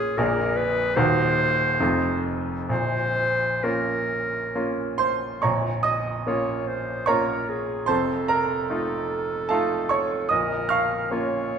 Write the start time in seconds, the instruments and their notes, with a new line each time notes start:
Already playing: grand piano A#0 A#1 A#3 C#4 F4, clarinet G#4
0.17 grand piano A#0 A#1 A#3 D4 G#4, clarinet A#4
0.56 clarinet B4
0.96 grand piano D#1 D#2 A#3 D#4 F#4, clarinet C5
1.80 grand piano F1 F2 A3 D#4 F4
2.69 grand piano A#0 A#1, clarinet C5
3.63 grand piano A#3 C#4 F4, clarinet A#4
4.55 grand piano A#3 C#4 F4
4.98 grand piano C5 C6
5.42 grand piano A#0 A#1 C#5 A#5 C#6
5.83 grand piano D#5 D#6
6.26 grand piano A#3 C#4 F4, clarinet C#5
6.68 clarinet C5
7.06 grand piano A#3 C#4 F4 C#5 A#5 C#6, clarinet A#4
7.49 clarinet G#4
7.86 grand piano F1 F2 C5 A5 C6, clarinet A4
8.28 grand piano A#4 A#5
8.70 grand piano A3 D#4 F4
9.49 grand piano A3 D#4 F4 A4 F5 A5
9.89 grand piano C#5 C#6
10.29 grand piano A#0 A#1 D#5 D#6, clarinet A#4
10.69 grand piano F5 C#6 F6
11.11 grand piano A#3 C#4 F4, clarinet C#5